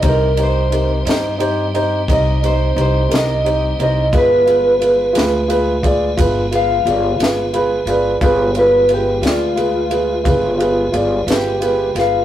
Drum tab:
RD |xxxxxxxxxxxx|xxxxxxxxxxxx|xxxxxxxxxxxx|
SD |---o-----o--|---o-----o--|---o-----o-o|
BD |o-----o-----|o----oo-----|o-----o-----|